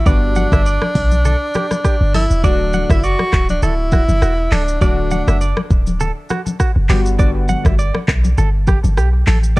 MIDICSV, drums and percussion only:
0, 0, Header, 1, 2, 480
1, 0, Start_track
1, 0, Key_signature, 2, "major"
1, 0, Tempo, 594059
1, 50, Time_signature, 4, 2, 24, 8
1, 7754, End_track
2, 0, Start_track
2, 0, Title_t, "Drums"
2, 50, Note_on_c, 9, 36, 112
2, 51, Note_on_c, 9, 64, 73
2, 51, Note_on_c, 9, 82, 78
2, 131, Note_off_c, 9, 36, 0
2, 132, Note_off_c, 9, 64, 0
2, 132, Note_off_c, 9, 82, 0
2, 286, Note_on_c, 9, 82, 57
2, 297, Note_on_c, 9, 63, 77
2, 367, Note_off_c, 9, 82, 0
2, 378, Note_off_c, 9, 63, 0
2, 421, Note_on_c, 9, 36, 92
2, 425, Note_on_c, 9, 82, 77
2, 426, Note_on_c, 9, 63, 53
2, 427, Note_on_c, 9, 37, 95
2, 501, Note_off_c, 9, 36, 0
2, 506, Note_off_c, 9, 82, 0
2, 507, Note_off_c, 9, 63, 0
2, 508, Note_off_c, 9, 37, 0
2, 533, Note_on_c, 9, 82, 77
2, 613, Note_off_c, 9, 82, 0
2, 660, Note_on_c, 9, 37, 98
2, 664, Note_on_c, 9, 63, 66
2, 741, Note_off_c, 9, 37, 0
2, 745, Note_off_c, 9, 63, 0
2, 770, Note_on_c, 9, 36, 104
2, 770, Note_on_c, 9, 46, 74
2, 770, Note_on_c, 9, 82, 56
2, 851, Note_off_c, 9, 36, 0
2, 851, Note_off_c, 9, 46, 0
2, 851, Note_off_c, 9, 82, 0
2, 899, Note_on_c, 9, 82, 72
2, 906, Note_on_c, 9, 63, 75
2, 980, Note_off_c, 9, 82, 0
2, 987, Note_off_c, 9, 63, 0
2, 1009, Note_on_c, 9, 82, 70
2, 1016, Note_on_c, 9, 64, 83
2, 1090, Note_off_c, 9, 82, 0
2, 1096, Note_off_c, 9, 64, 0
2, 1246, Note_on_c, 9, 82, 52
2, 1254, Note_on_c, 9, 63, 71
2, 1258, Note_on_c, 9, 37, 84
2, 1327, Note_off_c, 9, 82, 0
2, 1335, Note_off_c, 9, 63, 0
2, 1339, Note_off_c, 9, 37, 0
2, 1381, Note_on_c, 9, 37, 94
2, 1383, Note_on_c, 9, 82, 73
2, 1385, Note_on_c, 9, 63, 83
2, 1462, Note_off_c, 9, 37, 0
2, 1464, Note_off_c, 9, 82, 0
2, 1465, Note_off_c, 9, 63, 0
2, 1491, Note_on_c, 9, 36, 93
2, 1491, Note_on_c, 9, 37, 94
2, 1493, Note_on_c, 9, 82, 85
2, 1572, Note_off_c, 9, 36, 0
2, 1572, Note_off_c, 9, 37, 0
2, 1573, Note_off_c, 9, 82, 0
2, 1732, Note_on_c, 9, 63, 85
2, 1732, Note_on_c, 9, 64, 82
2, 1733, Note_on_c, 9, 46, 78
2, 1733, Note_on_c, 9, 82, 56
2, 1813, Note_off_c, 9, 46, 0
2, 1813, Note_off_c, 9, 63, 0
2, 1813, Note_off_c, 9, 64, 0
2, 1813, Note_off_c, 9, 82, 0
2, 1863, Note_on_c, 9, 82, 78
2, 1944, Note_off_c, 9, 82, 0
2, 1970, Note_on_c, 9, 36, 109
2, 1971, Note_on_c, 9, 64, 78
2, 1971, Note_on_c, 9, 82, 76
2, 2051, Note_off_c, 9, 36, 0
2, 2052, Note_off_c, 9, 64, 0
2, 2052, Note_off_c, 9, 82, 0
2, 2206, Note_on_c, 9, 82, 57
2, 2217, Note_on_c, 9, 63, 73
2, 2287, Note_off_c, 9, 82, 0
2, 2298, Note_off_c, 9, 63, 0
2, 2341, Note_on_c, 9, 36, 99
2, 2345, Note_on_c, 9, 82, 79
2, 2347, Note_on_c, 9, 37, 102
2, 2347, Note_on_c, 9, 63, 53
2, 2421, Note_off_c, 9, 36, 0
2, 2426, Note_off_c, 9, 82, 0
2, 2427, Note_off_c, 9, 63, 0
2, 2428, Note_off_c, 9, 37, 0
2, 2452, Note_on_c, 9, 82, 82
2, 2533, Note_off_c, 9, 82, 0
2, 2579, Note_on_c, 9, 37, 96
2, 2585, Note_on_c, 9, 63, 69
2, 2660, Note_off_c, 9, 37, 0
2, 2666, Note_off_c, 9, 63, 0
2, 2689, Note_on_c, 9, 37, 88
2, 2689, Note_on_c, 9, 39, 96
2, 2690, Note_on_c, 9, 36, 102
2, 2690, Note_on_c, 9, 82, 56
2, 2770, Note_off_c, 9, 37, 0
2, 2770, Note_off_c, 9, 39, 0
2, 2771, Note_off_c, 9, 36, 0
2, 2771, Note_off_c, 9, 82, 0
2, 2820, Note_on_c, 9, 82, 71
2, 2826, Note_on_c, 9, 63, 79
2, 2900, Note_off_c, 9, 82, 0
2, 2907, Note_off_c, 9, 63, 0
2, 2928, Note_on_c, 9, 82, 71
2, 2936, Note_on_c, 9, 64, 81
2, 3009, Note_off_c, 9, 82, 0
2, 3016, Note_off_c, 9, 64, 0
2, 3166, Note_on_c, 9, 82, 52
2, 3169, Note_on_c, 9, 36, 110
2, 3175, Note_on_c, 9, 63, 71
2, 3178, Note_on_c, 9, 37, 85
2, 3246, Note_off_c, 9, 82, 0
2, 3250, Note_off_c, 9, 36, 0
2, 3255, Note_off_c, 9, 63, 0
2, 3259, Note_off_c, 9, 37, 0
2, 3302, Note_on_c, 9, 82, 77
2, 3305, Note_on_c, 9, 63, 87
2, 3383, Note_off_c, 9, 82, 0
2, 3386, Note_off_c, 9, 63, 0
2, 3410, Note_on_c, 9, 37, 96
2, 3412, Note_on_c, 9, 82, 82
2, 3491, Note_off_c, 9, 37, 0
2, 3493, Note_off_c, 9, 82, 0
2, 3649, Note_on_c, 9, 39, 93
2, 3652, Note_on_c, 9, 46, 76
2, 3652, Note_on_c, 9, 82, 56
2, 3653, Note_on_c, 9, 63, 80
2, 3729, Note_off_c, 9, 39, 0
2, 3733, Note_off_c, 9, 46, 0
2, 3733, Note_off_c, 9, 82, 0
2, 3734, Note_off_c, 9, 63, 0
2, 3783, Note_on_c, 9, 82, 82
2, 3864, Note_off_c, 9, 82, 0
2, 3890, Note_on_c, 9, 36, 113
2, 3891, Note_on_c, 9, 64, 77
2, 3891, Note_on_c, 9, 82, 80
2, 3971, Note_off_c, 9, 36, 0
2, 3972, Note_off_c, 9, 64, 0
2, 3972, Note_off_c, 9, 82, 0
2, 4127, Note_on_c, 9, 82, 56
2, 4137, Note_on_c, 9, 63, 76
2, 4208, Note_off_c, 9, 82, 0
2, 4218, Note_off_c, 9, 63, 0
2, 4265, Note_on_c, 9, 82, 75
2, 4267, Note_on_c, 9, 37, 98
2, 4267, Note_on_c, 9, 63, 53
2, 4346, Note_off_c, 9, 82, 0
2, 4347, Note_off_c, 9, 63, 0
2, 4348, Note_off_c, 9, 37, 0
2, 4372, Note_on_c, 9, 82, 80
2, 4453, Note_off_c, 9, 82, 0
2, 4499, Note_on_c, 9, 37, 102
2, 4504, Note_on_c, 9, 63, 70
2, 4580, Note_off_c, 9, 37, 0
2, 4585, Note_off_c, 9, 63, 0
2, 4610, Note_on_c, 9, 36, 105
2, 4610, Note_on_c, 9, 82, 53
2, 4691, Note_off_c, 9, 36, 0
2, 4691, Note_off_c, 9, 82, 0
2, 4740, Note_on_c, 9, 82, 69
2, 4746, Note_on_c, 9, 63, 77
2, 4821, Note_off_c, 9, 82, 0
2, 4827, Note_off_c, 9, 63, 0
2, 4849, Note_on_c, 9, 82, 73
2, 4856, Note_on_c, 9, 64, 85
2, 4930, Note_off_c, 9, 82, 0
2, 4937, Note_off_c, 9, 64, 0
2, 5086, Note_on_c, 9, 82, 53
2, 5094, Note_on_c, 9, 63, 67
2, 5098, Note_on_c, 9, 37, 84
2, 5167, Note_off_c, 9, 82, 0
2, 5175, Note_off_c, 9, 63, 0
2, 5179, Note_off_c, 9, 37, 0
2, 5223, Note_on_c, 9, 82, 71
2, 5224, Note_on_c, 9, 63, 83
2, 5304, Note_off_c, 9, 82, 0
2, 5305, Note_off_c, 9, 63, 0
2, 5331, Note_on_c, 9, 36, 89
2, 5331, Note_on_c, 9, 37, 95
2, 5332, Note_on_c, 9, 82, 86
2, 5412, Note_off_c, 9, 36, 0
2, 5412, Note_off_c, 9, 37, 0
2, 5413, Note_off_c, 9, 82, 0
2, 5568, Note_on_c, 9, 39, 95
2, 5572, Note_on_c, 9, 46, 77
2, 5572, Note_on_c, 9, 63, 82
2, 5572, Note_on_c, 9, 82, 56
2, 5649, Note_off_c, 9, 39, 0
2, 5653, Note_off_c, 9, 46, 0
2, 5653, Note_off_c, 9, 63, 0
2, 5653, Note_off_c, 9, 82, 0
2, 5703, Note_on_c, 9, 82, 80
2, 5784, Note_off_c, 9, 82, 0
2, 5810, Note_on_c, 9, 36, 115
2, 5810, Note_on_c, 9, 64, 72
2, 5811, Note_on_c, 9, 82, 81
2, 5891, Note_off_c, 9, 36, 0
2, 5891, Note_off_c, 9, 64, 0
2, 5892, Note_off_c, 9, 82, 0
2, 6047, Note_on_c, 9, 82, 54
2, 6057, Note_on_c, 9, 63, 77
2, 6128, Note_off_c, 9, 82, 0
2, 6138, Note_off_c, 9, 63, 0
2, 6181, Note_on_c, 9, 36, 94
2, 6185, Note_on_c, 9, 82, 74
2, 6186, Note_on_c, 9, 63, 52
2, 6187, Note_on_c, 9, 37, 105
2, 6262, Note_off_c, 9, 36, 0
2, 6266, Note_off_c, 9, 82, 0
2, 6267, Note_off_c, 9, 63, 0
2, 6268, Note_off_c, 9, 37, 0
2, 6293, Note_on_c, 9, 82, 75
2, 6374, Note_off_c, 9, 82, 0
2, 6420, Note_on_c, 9, 37, 101
2, 6424, Note_on_c, 9, 63, 66
2, 6501, Note_off_c, 9, 37, 0
2, 6505, Note_off_c, 9, 63, 0
2, 6530, Note_on_c, 9, 37, 91
2, 6530, Note_on_c, 9, 39, 94
2, 6531, Note_on_c, 9, 36, 103
2, 6531, Note_on_c, 9, 82, 57
2, 6611, Note_off_c, 9, 36, 0
2, 6611, Note_off_c, 9, 37, 0
2, 6611, Note_off_c, 9, 39, 0
2, 6611, Note_off_c, 9, 82, 0
2, 6661, Note_on_c, 9, 82, 74
2, 6666, Note_on_c, 9, 63, 79
2, 6741, Note_off_c, 9, 82, 0
2, 6747, Note_off_c, 9, 63, 0
2, 6769, Note_on_c, 9, 82, 73
2, 6776, Note_on_c, 9, 64, 85
2, 6850, Note_off_c, 9, 82, 0
2, 6856, Note_off_c, 9, 64, 0
2, 7006, Note_on_c, 9, 82, 50
2, 7010, Note_on_c, 9, 36, 106
2, 7014, Note_on_c, 9, 63, 73
2, 7018, Note_on_c, 9, 37, 86
2, 7087, Note_off_c, 9, 82, 0
2, 7091, Note_off_c, 9, 36, 0
2, 7095, Note_off_c, 9, 63, 0
2, 7099, Note_off_c, 9, 37, 0
2, 7143, Note_on_c, 9, 82, 74
2, 7145, Note_on_c, 9, 63, 88
2, 7224, Note_off_c, 9, 82, 0
2, 7225, Note_off_c, 9, 63, 0
2, 7251, Note_on_c, 9, 37, 96
2, 7253, Note_on_c, 9, 82, 91
2, 7332, Note_off_c, 9, 37, 0
2, 7333, Note_off_c, 9, 82, 0
2, 7489, Note_on_c, 9, 39, 99
2, 7492, Note_on_c, 9, 46, 73
2, 7492, Note_on_c, 9, 82, 53
2, 7493, Note_on_c, 9, 63, 81
2, 7570, Note_off_c, 9, 39, 0
2, 7573, Note_off_c, 9, 46, 0
2, 7573, Note_off_c, 9, 82, 0
2, 7574, Note_off_c, 9, 63, 0
2, 7623, Note_on_c, 9, 82, 77
2, 7704, Note_off_c, 9, 82, 0
2, 7754, End_track
0, 0, End_of_file